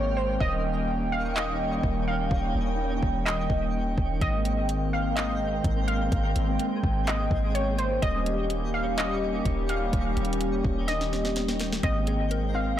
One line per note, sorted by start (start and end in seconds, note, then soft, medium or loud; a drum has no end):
0.00 0.38 G#1 loud
0.00 7.98 D#3 medium
0.00 0.37 G#3 medium
0.00 7.98 A#3 medium
0.00 0.37 C4 medium
0.00 0.37 A#4 medium
0.00 0.16 C#5 medium
0.00 0.39 F5 medium
0.00 7.98 G5 medium
0.17 0.39 C5 medium
0.40 1.79 D#1 loud
0.40 4.18 G3 medium
0.40 4.18 C#4 medium
0.40 4.18 D#4 medium
0.40 4.18 C#5 medium
0.40 1.08 D#5 loud
0.40 7.99 G5 medium
0.40 kick loud
1.12 1.35 F5 medium
1.36 2.03 D#5 loud
1.36 clap loud
1.83 2.29 D#1 loud
1.83 kick medium
2.08 2.30 F5 medium
2.31 2.54 D#1 loud
2.31 kick loud
2.55 3.01 D#1 loud
3.03 3.48 D#1 loud
3.03 kick medium
3.25 4.17 D#5 medium
3.25 clap loud
3.50 3.96 D#1 loud
3.50 kick medium
3.98 4.21 D#1 loud
3.98 kick medium
4.21 5.60 G#1 loud
4.21 7.99 G#3 medium
4.21 7.98 C4 medium
4.21 7.99 C4 medium
4.21 6.10 A#4 medium
4.21 4.89 D#5 loud
4.21 kick loud
4.21 closed hi-hat medium
4.45 closed hi-hat medium
4.69 closed hi-hat medium
4.93 5.16 F5 medium
5.16 5.84 D#5 medium
5.16 clap loud
5.16 closed hi-hat medium
5.64 6.10 G#1 loud
5.64 kick medium
5.64 closed hi-hat medium
5.88 6.11 F5 medium
5.88 closed hi-hat medium
6.12 6.35 G#1 loud
6.12 8.00 G#4 medium
6.12 kick loud
6.12 closed hi-hat medium
6.36 6.59 G#1 loud
6.36 closed hi-hat medium
6.59 closed hi-hat medium
6.83 7.29 G#1 loud
6.83 kick medium
7.07 7.52 D#5 medium
7.07 clap loud
7.07 closed hi-hat medium
7.31 8.00 G#1 loud
7.31 kick medium
7.55 7.77 C#5 medium
7.55 closed hi-hat medium
7.78 8.01 C5 medium
7.78 closed hi-hat medium
8.02 9.41 D#1 loud
8.02 12.80 D#3 medium
8.02 11.80 G3 medium
8.02 11.80 A#3 medium
8.02 11.79 C#4 medium
8.02 11.80 D#4 medium
8.02 11.79 G4 medium
8.02 11.80 C#5 medium
8.02 8.70 D#5 loud
8.02 12.80 G5 medium
8.02 kick loud
8.02 closed hi-hat medium
8.26 closed hi-hat medium
8.50 closed hi-hat medium
8.74 8.97 F5 medium
8.98 9.65 D#5 loud
8.98 clap loud
8.98 closed hi-hat medium
9.45 9.91 D#1 loud
9.45 kick medium
9.45 closed hi-hat medium
9.69 9.92 F5 medium
9.69 closed hi-hat medium
9.93 10.16 D#1 loud
9.93 kick loud
9.93 closed hi-hat medium
10.17 10.62 D#1 loud
10.17 closed hi-hat soft
10.25 closed hi-hat medium
10.33 closed hi-hat medium
10.41 closed hi-hat medium
10.65 11.79 D#1 loud
10.65 kick medium
10.88 11.79 D#5 medium
10.88 snare medium
10.88 closed hi-hat medium
11.01 snare medium
11.13 snare medium
11.25 snare medium
11.36 snare medium
11.36 closed hi-hat medium
11.48 snare medium
11.60 snare loud
11.60 closed hi-hat medium
11.72 snare medium
11.83 12.80 G#1 loud
11.83 12.80 G#3 medium
11.83 12.80 A#3 medium
11.83 12.53 C4 medium
11.83 12.80 C4 medium
11.83 12.80 A#4 medium
11.83 12.51 D#5 loud
11.83 12.80 G5 medium
11.83 kick loud
11.83 closed hi-hat medium
12.07 12.77 G#4 medium
12.07 closed hi-hat medium
12.31 12.80 A#4 medium
12.31 closed hi-hat medium
12.54 12.80 C4 medium
12.54 12.78 F5 medium